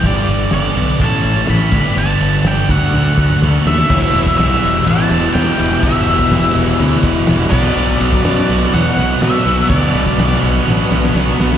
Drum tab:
CC |----------------|----------------|x---------------|--------------x-|
RD |----------------|----------------|--x-x-x-x-x-x-x-|x-x-x-x-x-x-x---|
HH |x-x-x-xxx-x-x-x-|x-xxx-x---------|----------------|----------------|
SD |----o------oo---|----o-------o-oo|----o-------o-o-|----o-------o---|
T1 |----------------|--------o-------|----------------|----------------|
T2 |----------------|-----------o----|----------------|----------------|
BD |o-------o-----o-|------o---o-----|oo-o------------|o--o------o---o-|

CC |----------------|----------------|
RD |--x-x-x-x-x-x-x-|x-x-x-x---------|
HH |----------------|----------------|
SD |----o-------o---|----o---o-ooo-oo|
T1 |----------------|----------------|
T2 |----------------|----------------|
BD |---o------------|o--o------------|